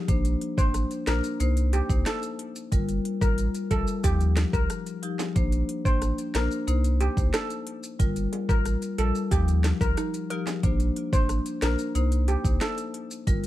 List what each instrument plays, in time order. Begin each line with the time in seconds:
0.08 sub bass A#1, marimba A#3 D4 C5, kick, closed hi-hat, maracas
0.25 closed hi-hat, maracas
0.41 closed hi-hat
0.58 sub bass A1, marimba A#3 D4 C5, steel pan C5, kick, maracas
0.74 cross-stick, closed hi-hat, maracas
0.91 closed hi-hat, maracas
1.07 sub bass A#1, marimba A#3 D4 C5, steel pan A#4, cross-stick, snare, closed hi-hat, maracas
1.24 maracas
1.40 sub bass C2, marimba A#3 D#4 C5, closed hi-hat, maracas
1.57 closed hi-hat, maracas
1.73 steel pan G4, closed hi-hat, maracas
1.89 sub bass C2, marimba A#3 D#4 C5, kick, maracas
2.06 steel pan A4, cross-stick, snare, closed hi-hat, maracas
2.23 closed hi-hat, maracas
2.39 closed hi-hat
2.56 maracas
2.72 sub bass G1, marimba G3 F4 A#4, kick, closed hi-hat, maracas
2.88 closed hi-hat, maracas
3.05 closed hi-hat
3.21 sub bass A1, marimba G3 F4 A#4, steel pan A#4, kick, maracas
3.38 closed hi-hat, maracas
3.54 closed hi-hat, maracas
3.71 sub bass A#1, marimba G3 F4 A#4, steel pan A4, kick, closed hi-hat, maracas
3.87 maracas
4.04 sub bass D#2, marimba F3 D#4 G4, steel pan G4, kick, closed hi-hat, maracas
4.20 closed hi-hat, maracas
4.37 cross-stick, snare, closed hi-hat, maracas
4.53 sub bass C2, steel pan A#4, kick, maracas
4.70 cross-stick, closed hi-hat, maracas
4.86 closed hi-hat, maracas
5.03 marimba F3 D#4 G4, closed hi-hat
5.19 snare, high timbale, maracas
5.36 sub bass A#1, marimba A#3 D4 C5, kick, closed hi-hat, maracas
5.52 closed hi-hat, maracas
5.69 closed hi-hat
5.85 sub bass A1, marimba A#3 D4 C5, steel pan C5, kick, maracas
6.02 cross-stick, closed hi-hat, maracas
6.18 closed hi-hat, maracas
6.34 sub bass A#1, marimba A#3 D4 C5, steel pan A#4, cross-stick, snare, closed hi-hat, maracas
6.51 maracas
6.67 sub bass C2, marimba A#3 D#4 C5, closed hi-hat, maracas
6.84 closed hi-hat, maracas
7.01 steel pan G4, closed hi-hat, maracas
7.17 sub bass C2, marimba A#3 D#4 C5, kick, maracas
7.34 steel pan A4, cross-stick, snare, closed hi-hat, maracas
7.50 closed hi-hat, maracas
7.67 closed hi-hat
7.83 maracas
7.99 sub bass G1, marimba G3 F4 A#4, kick, closed hi-hat, maracas
8.16 closed hi-hat, maracas
8.33 closed hi-hat, high timbale
8.49 sub bass A1, marimba G3 F4 A#4, steel pan A#4, kick, maracas
8.65 cross-stick, closed hi-hat, maracas
8.82 closed hi-hat, maracas
8.98 sub bass A#1, marimba G3 F4 A#4, steel pan A4, closed hi-hat, maracas
9.15 maracas
9.31 sub bass D#2, marimba F3 D#4 G4, steel pan G4, kick, closed hi-hat, maracas
9.48 closed hi-hat, maracas
9.64 cross-stick, snare, closed hi-hat, maracas
9.81 sub bass C2, steel pan A#4, kick, maracas
9.97 synth pluck D#4, cross-stick, closed hi-hat, maracas
10.14 closed hi-hat, maracas
10.30 marimba F3 D#4 G4, synth pluck A#4, closed hi-hat
10.47 snare, high timbale, maracas
10.63 sub bass A#1, marimba A#3 D4 C5, kick, closed hi-hat, maracas
10.80 closed hi-hat, maracas
10.96 closed hi-hat
11.13 sub bass A1, marimba A#3 D4 C5, steel pan C5, kick, maracas
11.29 cross-stick, closed hi-hat, maracas
11.46 closed hi-hat, maracas
11.62 sub bass A#1, marimba A#3 D4 C5, steel pan A#4, cross-stick, snare, closed hi-hat, maracas
11.79 maracas
11.95 sub bass C2, marimba A#3 D#4 C5, closed hi-hat, maracas
12.12 closed hi-hat, maracas
12.28 steel pan G4, closed hi-hat, maracas
12.44 sub bass C2, marimba A#3 D#4 C5, kick, maracas
12.61 steel pan A4, cross-stick, snare, closed hi-hat, maracas
12.78 closed hi-hat, maracas
12.94 closed hi-hat
13.11 maracas
13.27 sub bass G1, marimba G3 F4 A#4, kick, closed hi-hat, maracas
13.44 closed hi-hat, maracas